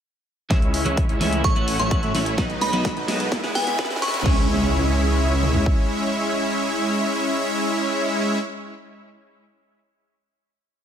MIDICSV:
0, 0, Header, 1, 8, 480
1, 0, Start_track
1, 0, Key_signature, 4, "minor"
1, 0, Tempo, 468750
1, 518, Time_signature, 4, 2, 24, 8
1, 11102, End_track
2, 0, Start_track
2, 0, Title_t, "Synth bell"
2, 0, Program_c, 0, 98
2, 1479, Note_on_c, 0, 85, 90
2, 1656, Note_off_c, 0, 85, 0
2, 1838, Note_on_c, 0, 85, 93
2, 2015, Note_off_c, 0, 85, 0
2, 2678, Note_on_c, 0, 83, 93
2, 2855, Note_off_c, 0, 83, 0
2, 3637, Note_on_c, 0, 80, 92
2, 3815, Note_off_c, 0, 80, 0
2, 4117, Note_on_c, 0, 85, 95
2, 4358, Note_off_c, 0, 85, 0
2, 11102, End_track
3, 0, Start_track
3, 0, Title_t, "Supersaw synth"
3, 0, Program_c, 1, 81
3, 517, Note_on_c, 1, 64, 87
3, 518, Note_on_c, 1, 56, 93
3, 518, Note_on_c, 1, 61, 85
3, 518, Note_on_c, 1, 73, 86
3, 518, Note_on_c, 1, 76, 105
3, 849, Note_off_c, 1, 56, 0
3, 849, Note_off_c, 1, 61, 0
3, 849, Note_off_c, 1, 64, 0
3, 849, Note_off_c, 1, 73, 0
3, 849, Note_off_c, 1, 76, 0
3, 878, Note_on_c, 1, 56, 86
3, 878, Note_on_c, 1, 61, 80
3, 878, Note_on_c, 1, 64, 78
3, 878, Note_on_c, 1, 73, 81
3, 878, Note_on_c, 1, 76, 99
3, 1068, Note_off_c, 1, 56, 0
3, 1068, Note_off_c, 1, 61, 0
3, 1068, Note_off_c, 1, 64, 0
3, 1068, Note_off_c, 1, 73, 0
3, 1068, Note_off_c, 1, 76, 0
3, 1118, Note_on_c, 1, 56, 76
3, 1118, Note_on_c, 1, 61, 68
3, 1118, Note_on_c, 1, 64, 66
3, 1118, Note_on_c, 1, 73, 68
3, 1118, Note_on_c, 1, 76, 84
3, 1209, Note_off_c, 1, 56, 0
3, 1209, Note_off_c, 1, 61, 0
3, 1210, Note_off_c, 1, 64, 0
3, 1210, Note_off_c, 1, 73, 0
3, 1210, Note_off_c, 1, 76, 0
3, 1237, Note_on_c, 1, 61, 70
3, 1237, Note_on_c, 1, 73, 70
3, 1238, Note_on_c, 1, 56, 76
3, 1238, Note_on_c, 1, 64, 68
3, 1238, Note_on_c, 1, 76, 86
3, 1449, Note_off_c, 1, 56, 0
3, 1449, Note_off_c, 1, 61, 0
3, 1449, Note_off_c, 1, 64, 0
3, 1449, Note_off_c, 1, 73, 0
3, 1449, Note_off_c, 1, 76, 0
3, 1477, Note_on_c, 1, 61, 88
3, 1477, Note_on_c, 1, 64, 87
3, 1478, Note_on_c, 1, 57, 100
3, 1478, Note_on_c, 1, 73, 90
3, 1478, Note_on_c, 1, 76, 111
3, 1569, Note_off_c, 1, 57, 0
3, 1569, Note_off_c, 1, 61, 0
3, 1569, Note_off_c, 1, 64, 0
3, 1569, Note_off_c, 1, 73, 0
3, 1569, Note_off_c, 1, 76, 0
3, 1597, Note_on_c, 1, 61, 71
3, 1597, Note_on_c, 1, 73, 67
3, 1598, Note_on_c, 1, 57, 76
3, 1598, Note_on_c, 1, 64, 70
3, 1598, Note_on_c, 1, 78, 82
3, 1809, Note_off_c, 1, 61, 0
3, 1809, Note_off_c, 1, 64, 0
3, 1809, Note_off_c, 1, 73, 0
3, 1810, Note_off_c, 1, 57, 0
3, 1810, Note_off_c, 1, 78, 0
3, 1837, Note_on_c, 1, 64, 74
3, 1838, Note_on_c, 1, 57, 84
3, 1838, Note_on_c, 1, 61, 73
3, 1838, Note_on_c, 1, 73, 76
3, 1838, Note_on_c, 1, 76, 88
3, 2049, Note_off_c, 1, 57, 0
3, 2049, Note_off_c, 1, 64, 0
3, 2050, Note_off_c, 1, 61, 0
3, 2050, Note_off_c, 1, 73, 0
3, 2050, Note_off_c, 1, 76, 0
3, 2077, Note_on_c, 1, 61, 74
3, 2077, Note_on_c, 1, 64, 69
3, 2078, Note_on_c, 1, 57, 78
3, 2078, Note_on_c, 1, 73, 72
3, 2078, Note_on_c, 1, 76, 86
3, 2169, Note_off_c, 1, 57, 0
3, 2169, Note_off_c, 1, 61, 0
3, 2169, Note_off_c, 1, 64, 0
3, 2169, Note_off_c, 1, 73, 0
3, 2169, Note_off_c, 1, 76, 0
3, 2198, Note_on_c, 1, 61, 66
3, 2198, Note_on_c, 1, 64, 68
3, 2198, Note_on_c, 1, 73, 66
3, 2198, Note_on_c, 1, 76, 84
3, 2199, Note_on_c, 1, 57, 74
3, 2410, Note_off_c, 1, 57, 0
3, 2410, Note_off_c, 1, 61, 0
3, 2410, Note_off_c, 1, 64, 0
3, 2410, Note_off_c, 1, 73, 0
3, 2410, Note_off_c, 1, 76, 0
3, 2437, Note_on_c, 1, 54, 94
3, 2437, Note_on_c, 1, 63, 89
3, 2438, Note_on_c, 1, 59, 87
3, 2438, Note_on_c, 1, 71, 84
3, 2438, Note_on_c, 1, 75, 106
3, 2769, Note_off_c, 1, 54, 0
3, 2769, Note_off_c, 1, 59, 0
3, 2769, Note_off_c, 1, 63, 0
3, 2769, Note_off_c, 1, 71, 0
3, 2769, Note_off_c, 1, 75, 0
3, 2798, Note_on_c, 1, 54, 87
3, 2798, Note_on_c, 1, 59, 78
3, 2798, Note_on_c, 1, 63, 80
3, 2798, Note_on_c, 1, 71, 78
3, 2798, Note_on_c, 1, 75, 93
3, 2988, Note_off_c, 1, 54, 0
3, 2988, Note_off_c, 1, 59, 0
3, 2988, Note_off_c, 1, 63, 0
3, 2988, Note_off_c, 1, 71, 0
3, 2988, Note_off_c, 1, 75, 0
3, 3038, Note_on_c, 1, 54, 76
3, 3038, Note_on_c, 1, 59, 72
3, 3038, Note_on_c, 1, 63, 70
3, 3038, Note_on_c, 1, 71, 70
3, 3039, Note_on_c, 1, 75, 86
3, 3130, Note_off_c, 1, 54, 0
3, 3130, Note_off_c, 1, 59, 0
3, 3130, Note_off_c, 1, 63, 0
3, 3130, Note_off_c, 1, 71, 0
3, 3130, Note_off_c, 1, 75, 0
3, 3157, Note_on_c, 1, 54, 77
3, 3157, Note_on_c, 1, 75, 86
3, 3158, Note_on_c, 1, 59, 70
3, 3158, Note_on_c, 1, 63, 73
3, 3158, Note_on_c, 1, 71, 72
3, 3369, Note_off_c, 1, 54, 0
3, 3369, Note_off_c, 1, 59, 0
3, 3369, Note_off_c, 1, 63, 0
3, 3369, Note_off_c, 1, 71, 0
3, 3369, Note_off_c, 1, 75, 0
3, 3397, Note_on_c, 1, 56, 102
3, 3397, Note_on_c, 1, 59, 90
3, 3397, Note_on_c, 1, 64, 91
3, 3397, Note_on_c, 1, 76, 106
3, 3489, Note_off_c, 1, 56, 0
3, 3489, Note_off_c, 1, 59, 0
3, 3489, Note_off_c, 1, 64, 0
3, 3489, Note_off_c, 1, 76, 0
3, 3517, Note_on_c, 1, 56, 77
3, 3517, Note_on_c, 1, 64, 70
3, 3517, Note_on_c, 1, 71, 71
3, 3517, Note_on_c, 1, 78, 87
3, 3518, Note_on_c, 1, 59, 74
3, 3729, Note_off_c, 1, 56, 0
3, 3729, Note_off_c, 1, 59, 0
3, 3729, Note_off_c, 1, 64, 0
3, 3729, Note_off_c, 1, 71, 0
3, 3729, Note_off_c, 1, 78, 0
3, 3757, Note_on_c, 1, 56, 80
3, 3757, Note_on_c, 1, 59, 75
3, 3757, Note_on_c, 1, 64, 75
3, 3757, Note_on_c, 1, 76, 93
3, 3758, Note_on_c, 1, 71, 78
3, 3969, Note_off_c, 1, 56, 0
3, 3969, Note_off_c, 1, 59, 0
3, 3969, Note_off_c, 1, 64, 0
3, 3969, Note_off_c, 1, 71, 0
3, 3969, Note_off_c, 1, 76, 0
3, 3999, Note_on_c, 1, 59, 74
3, 3999, Note_on_c, 1, 64, 74
3, 3999, Note_on_c, 1, 76, 88
3, 4000, Note_on_c, 1, 56, 80
3, 4000, Note_on_c, 1, 71, 73
3, 4090, Note_off_c, 1, 56, 0
3, 4090, Note_off_c, 1, 59, 0
3, 4090, Note_off_c, 1, 64, 0
3, 4090, Note_off_c, 1, 71, 0
3, 4090, Note_off_c, 1, 76, 0
3, 4118, Note_on_c, 1, 56, 77
3, 4118, Note_on_c, 1, 64, 67
3, 4118, Note_on_c, 1, 71, 68
3, 4119, Note_on_c, 1, 59, 66
3, 4119, Note_on_c, 1, 76, 82
3, 4330, Note_off_c, 1, 56, 0
3, 4330, Note_off_c, 1, 59, 0
3, 4330, Note_off_c, 1, 64, 0
3, 4330, Note_off_c, 1, 71, 0
3, 4330, Note_off_c, 1, 76, 0
3, 4360, Note_on_c, 1, 56, 86
3, 4360, Note_on_c, 1, 61, 78
3, 4360, Note_on_c, 1, 64, 78
3, 4360, Note_on_c, 1, 76, 92
3, 4361, Note_on_c, 1, 73, 78
3, 8584, Note_off_c, 1, 56, 0
3, 8584, Note_off_c, 1, 76, 0
3, 8585, Note_off_c, 1, 61, 0
3, 8585, Note_off_c, 1, 64, 0
3, 8585, Note_off_c, 1, 73, 0
3, 11102, End_track
4, 0, Start_track
4, 0, Title_t, "Clean electric guitar"
4, 0, Program_c, 2, 27
4, 512, Note_on_c, 2, 52, 83
4, 514, Note_on_c, 2, 56, 78
4, 523, Note_on_c, 2, 61, 64
4, 524, Note_on_c, 2, 64, 92
4, 585, Note_off_c, 2, 52, 0
4, 587, Note_off_c, 2, 56, 0
4, 589, Note_off_c, 2, 61, 0
4, 591, Note_off_c, 2, 64, 0
4, 870, Note_on_c, 2, 52, 83
4, 880, Note_on_c, 2, 56, 65
4, 880, Note_on_c, 2, 61, 74
4, 884, Note_on_c, 2, 64, 89
4, 987, Note_off_c, 2, 52, 0
4, 989, Note_off_c, 2, 56, 0
4, 991, Note_off_c, 2, 61, 0
4, 993, Note_off_c, 2, 64, 0
4, 1231, Note_on_c, 2, 52, 73
4, 1235, Note_on_c, 2, 57, 67
4, 1237, Note_on_c, 2, 61, 62
4, 1247, Note_on_c, 2, 64, 71
4, 1566, Note_off_c, 2, 52, 0
4, 1568, Note_off_c, 2, 57, 0
4, 1570, Note_off_c, 2, 61, 0
4, 1572, Note_off_c, 2, 64, 0
4, 1591, Note_on_c, 2, 52, 91
4, 1593, Note_on_c, 2, 57, 84
4, 1604, Note_on_c, 2, 61, 75
4, 1604, Note_on_c, 2, 64, 98
4, 1926, Note_off_c, 2, 52, 0
4, 1928, Note_off_c, 2, 57, 0
4, 1930, Note_off_c, 2, 61, 0
4, 1932, Note_off_c, 2, 64, 0
4, 1952, Note_on_c, 2, 52, 75
4, 1955, Note_on_c, 2, 57, 74
4, 1963, Note_on_c, 2, 61, 59
4, 1964, Note_on_c, 2, 66, 84
4, 2166, Note_off_c, 2, 52, 0
4, 2169, Note_off_c, 2, 57, 0
4, 2171, Note_off_c, 2, 61, 0
4, 2172, Note_off_c, 2, 66, 0
4, 2192, Note_on_c, 2, 52, 82
4, 2198, Note_on_c, 2, 57, 77
4, 2200, Note_on_c, 2, 61, 77
4, 2207, Note_on_c, 2, 66, 87
4, 2265, Note_off_c, 2, 52, 0
4, 2267, Note_off_c, 2, 57, 0
4, 2269, Note_off_c, 2, 61, 0
4, 2271, Note_off_c, 2, 66, 0
4, 2432, Note_on_c, 2, 54, 83
4, 2439, Note_on_c, 2, 59, 76
4, 2441, Note_on_c, 2, 63, 81
4, 2445, Note_on_c, 2, 66, 93
4, 2505, Note_off_c, 2, 54, 0
4, 2507, Note_off_c, 2, 59, 0
4, 2509, Note_off_c, 2, 63, 0
4, 2512, Note_off_c, 2, 66, 0
4, 2792, Note_on_c, 2, 54, 81
4, 2796, Note_on_c, 2, 59, 74
4, 2804, Note_on_c, 2, 63, 67
4, 2805, Note_on_c, 2, 66, 90
4, 2907, Note_off_c, 2, 54, 0
4, 2909, Note_off_c, 2, 59, 0
4, 2911, Note_off_c, 2, 63, 0
4, 2913, Note_off_c, 2, 66, 0
4, 3153, Note_on_c, 2, 56, 78
4, 3157, Note_on_c, 2, 59, 71
4, 3160, Note_on_c, 2, 64, 68
4, 3168, Note_on_c, 2, 68, 70
4, 3487, Note_off_c, 2, 56, 0
4, 3489, Note_off_c, 2, 59, 0
4, 3491, Note_off_c, 2, 64, 0
4, 3493, Note_off_c, 2, 68, 0
4, 3511, Note_on_c, 2, 56, 93
4, 3520, Note_on_c, 2, 64, 84
4, 3521, Note_on_c, 2, 59, 75
4, 3525, Note_on_c, 2, 68, 104
4, 3847, Note_off_c, 2, 56, 0
4, 3849, Note_off_c, 2, 59, 0
4, 3851, Note_off_c, 2, 64, 0
4, 3853, Note_off_c, 2, 68, 0
4, 3874, Note_on_c, 2, 56, 80
4, 3878, Note_on_c, 2, 59, 73
4, 3881, Note_on_c, 2, 64, 67
4, 3890, Note_on_c, 2, 71, 86
4, 4088, Note_off_c, 2, 56, 0
4, 4090, Note_off_c, 2, 59, 0
4, 4092, Note_off_c, 2, 64, 0
4, 4094, Note_off_c, 2, 71, 0
4, 4112, Note_on_c, 2, 56, 96
4, 4120, Note_on_c, 2, 59, 70
4, 4121, Note_on_c, 2, 64, 85
4, 4125, Note_on_c, 2, 71, 102
4, 4185, Note_off_c, 2, 56, 0
4, 4187, Note_off_c, 2, 59, 0
4, 4189, Note_off_c, 2, 64, 0
4, 4192, Note_off_c, 2, 71, 0
4, 4343, Note_on_c, 2, 56, 86
4, 4355, Note_on_c, 2, 61, 80
4, 4367, Note_on_c, 2, 64, 81
4, 4379, Note_on_c, 2, 68, 94
4, 8567, Note_off_c, 2, 56, 0
4, 8579, Note_off_c, 2, 61, 0
4, 8592, Note_off_c, 2, 64, 0
4, 8604, Note_off_c, 2, 68, 0
4, 11102, End_track
5, 0, Start_track
5, 0, Title_t, "Detuned saw bass"
5, 0, Program_c, 3, 39
5, 518, Note_on_c, 3, 37, 93
5, 854, Note_off_c, 3, 37, 0
5, 879, Note_on_c, 3, 37, 95
5, 1095, Note_off_c, 3, 37, 0
5, 1119, Note_on_c, 3, 37, 98
5, 1215, Note_off_c, 3, 37, 0
5, 1240, Note_on_c, 3, 37, 97
5, 1455, Note_off_c, 3, 37, 0
5, 1478, Note_on_c, 3, 33, 96
5, 1574, Note_off_c, 3, 33, 0
5, 1599, Note_on_c, 3, 33, 93
5, 1815, Note_off_c, 3, 33, 0
5, 1837, Note_on_c, 3, 33, 104
5, 2054, Note_off_c, 3, 33, 0
5, 2079, Note_on_c, 3, 45, 91
5, 2175, Note_off_c, 3, 45, 0
5, 2198, Note_on_c, 3, 33, 97
5, 2414, Note_off_c, 3, 33, 0
5, 2438, Note_on_c, 3, 35, 95
5, 2774, Note_off_c, 3, 35, 0
5, 2800, Note_on_c, 3, 35, 102
5, 3015, Note_off_c, 3, 35, 0
5, 3040, Note_on_c, 3, 35, 97
5, 3135, Note_off_c, 3, 35, 0
5, 3160, Note_on_c, 3, 35, 105
5, 3375, Note_off_c, 3, 35, 0
5, 3398, Note_on_c, 3, 40, 102
5, 3494, Note_off_c, 3, 40, 0
5, 3521, Note_on_c, 3, 40, 94
5, 3736, Note_off_c, 3, 40, 0
5, 3759, Note_on_c, 3, 40, 102
5, 3975, Note_off_c, 3, 40, 0
5, 4000, Note_on_c, 3, 40, 95
5, 4095, Note_off_c, 3, 40, 0
5, 4120, Note_on_c, 3, 40, 94
5, 4335, Note_off_c, 3, 40, 0
5, 4359, Note_on_c, 3, 37, 100
5, 5758, Note_off_c, 3, 37, 0
5, 11102, End_track
6, 0, Start_track
6, 0, Title_t, "Impact"
6, 0, Program_c, 4, 103
6, 4359, Note_on_c, 4, 60, 69
6, 8624, Note_off_c, 4, 60, 0
6, 11102, End_track
7, 0, Start_track
7, 0, Title_t, "Riser"
7, 0, Program_c, 5, 103
7, 518, Note_on_c, 5, 60, 81
7, 4358, Note_off_c, 5, 60, 0
7, 11102, End_track
8, 0, Start_track
8, 0, Title_t, "Drums"
8, 518, Note_on_c, 9, 36, 114
8, 518, Note_on_c, 9, 38, 48
8, 518, Note_on_c, 9, 42, 51
8, 620, Note_off_c, 9, 36, 0
8, 620, Note_off_c, 9, 38, 0
8, 620, Note_off_c, 9, 42, 0
8, 638, Note_on_c, 9, 42, 26
8, 740, Note_off_c, 9, 42, 0
8, 757, Note_on_c, 9, 46, 105
8, 859, Note_off_c, 9, 46, 0
8, 878, Note_on_c, 9, 42, 52
8, 980, Note_off_c, 9, 42, 0
8, 997, Note_on_c, 9, 42, 54
8, 998, Note_on_c, 9, 36, 112
8, 1100, Note_off_c, 9, 36, 0
8, 1100, Note_off_c, 9, 42, 0
8, 1118, Note_on_c, 9, 42, 27
8, 1221, Note_off_c, 9, 42, 0
8, 1237, Note_on_c, 9, 38, 55
8, 1237, Note_on_c, 9, 46, 101
8, 1339, Note_off_c, 9, 38, 0
8, 1339, Note_off_c, 9, 46, 0
8, 1358, Note_on_c, 9, 42, 53
8, 1460, Note_off_c, 9, 42, 0
8, 1477, Note_on_c, 9, 38, 56
8, 1477, Note_on_c, 9, 42, 54
8, 1478, Note_on_c, 9, 36, 115
8, 1579, Note_off_c, 9, 38, 0
8, 1579, Note_off_c, 9, 42, 0
8, 1580, Note_off_c, 9, 36, 0
8, 1599, Note_on_c, 9, 42, 27
8, 1701, Note_off_c, 9, 42, 0
8, 1717, Note_on_c, 9, 46, 105
8, 1820, Note_off_c, 9, 46, 0
8, 1838, Note_on_c, 9, 38, 54
8, 1838, Note_on_c, 9, 42, 53
8, 1941, Note_off_c, 9, 38, 0
8, 1941, Note_off_c, 9, 42, 0
8, 1958, Note_on_c, 9, 36, 117
8, 1958, Note_on_c, 9, 42, 52
8, 2060, Note_off_c, 9, 36, 0
8, 2060, Note_off_c, 9, 42, 0
8, 2077, Note_on_c, 9, 42, 27
8, 2180, Note_off_c, 9, 42, 0
8, 2198, Note_on_c, 9, 38, 68
8, 2198, Note_on_c, 9, 46, 106
8, 2300, Note_off_c, 9, 38, 0
8, 2300, Note_off_c, 9, 46, 0
8, 2317, Note_on_c, 9, 42, 53
8, 2420, Note_off_c, 9, 42, 0
8, 2436, Note_on_c, 9, 38, 74
8, 2436, Note_on_c, 9, 42, 55
8, 2438, Note_on_c, 9, 36, 124
8, 2539, Note_off_c, 9, 38, 0
8, 2539, Note_off_c, 9, 42, 0
8, 2540, Note_off_c, 9, 36, 0
8, 2557, Note_on_c, 9, 42, 27
8, 2659, Note_off_c, 9, 42, 0
8, 2677, Note_on_c, 9, 38, 77
8, 2677, Note_on_c, 9, 46, 109
8, 2779, Note_off_c, 9, 38, 0
8, 2779, Note_off_c, 9, 46, 0
8, 2797, Note_on_c, 9, 42, 53
8, 2899, Note_off_c, 9, 42, 0
8, 2917, Note_on_c, 9, 38, 82
8, 2917, Note_on_c, 9, 42, 55
8, 2918, Note_on_c, 9, 36, 126
8, 3020, Note_off_c, 9, 36, 0
8, 3020, Note_off_c, 9, 38, 0
8, 3020, Note_off_c, 9, 42, 0
8, 3038, Note_on_c, 9, 42, 27
8, 3140, Note_off_c, 9, 42, 0
8, 3157, Note_on_c, 9, 38, 86
8, 3157, Note_on_c, 9, 46, 112
8, 3260, Note_off_c, 9, 38, 0
8, 3260, Note_off_c, 9, 46, 0
8, 3277, Note_on_c, 9, 42, 53
8, 3380, Note_off_c, 9, 42, 0
8, 3398, Note_on_c, 9, 36, 123
8, 3398, Note_on_c, 9, 38, 92
8, 3398, Note_on_c, 9, 42, 53
8, 3500, Note_off_c, 9, 36, 0
8, 3501, Note_off_c, 9, 38, 0
8, 3501, Note_off_c, 9, 42, 0
8, 3519, Note_on_c, 9, 38, 80
8, 3519, Note_on_c, 9, 42, 25
8, 3621, Note_off_c, 9, 38, 0
8, 3621, Note_off_c, 9, 42, 0
8, 3638, Note_on_c, 9, 38, 98
8, 3638, Note_on_c, 9, 46, 112
8, 3740, Note_off_c, 9, 38, 0
8, 3740, Note_off_c, 9, 46, 0
8, 3758, Note_on_c, 9, 38, 84
8, 3758, Note_on_c, 9, 42, 53
8, 3861, Note_off_c, 9, 38, 0
8, 3861, Note_off_c, 9, 42, 0
8, 3878, Note_on_c, 9, 36, 122
8, 3878, Note_on_c, 9, 38, 103
8, 3878, Note_on_c, 9, 46, 62
8, 3938, Note_off_c, 9, 38, 0
8, 3938, Note_on_c, 9, 38, 89
8, 3980, Note_off_c, 9, 46, 0
8, 3981, Note_off_c, 9, 36, 0
8, 3998, Note_off_c, 9, 38, 0
8, 3998, Note_on_c, 9, 38, 94
8, 3998, Note_on_c, 9, 42, 28
8, 4057, Note_off_c, 9, 38, 0
8, 4057, Note_on_c, 9, 38, 95
8, 4100, Note_off_c, 9, 42, 0
8, 4118, Note_off_c, 9, 38, 0
8, 4118, Note_on_c, 9, 38, 106
8, 4118, Note_on_c, 9, 46, 109
8, 4178, Note_off_c, 9, 38, 0
8, 4178, Note_on_c, 9, 38, 98
8, 4220, Note_off_c, 9, 46, 0
8, 4239, Note_off_c, 9, 38, 0
8, 4239, Note_on_c, 9, 38, 99
8, 4239, Note_on_c, 9, 42, 55
8, 4298, Note_off_c, 9, 38, 0
8, 4298, Note_on_c, 9, 38, 101
8, 4341, Note_off_c, 9, 42, 0
8, 4358, Note_on_c, 9, 49, 86
8, 4359, Note_on_c, 9, 36, 115
8, 4401, Note_off_c, 9, 38, 0
8, 4461, Note_off_c, 9, 36, 0
8, 4461, Note_off_c, 9, 49, 0
8, 5559, Note_on_c, 9, 47, 64
8, 5661, Note_off_c, 9, 47, 0
8, 5679, Note_on_c, 9, 43, 81
8, 5781, Note_off_c, 9, 43, 0
8, 5799, Note_on_c, 9, 36, 94
8, 5901, Note_off_c, 9, 36, 0
8, 11102, End_track
0, 0, End_of_file